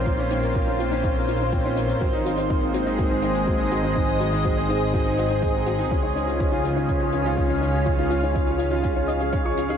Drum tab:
HH |x-xxx-xxx-xxx-xx|x-xxx-xxx-xxx-xx|x-xxx-xxx-xxx-xx|x-xxx-xxx-xxx-xx|
BD |o---o---o---o---|o---o---o---o---|o---o---o---o---|o---o---o---o---|

HH |x-xxx-xxx-xxx-xx|
BD |o---o---o---o---|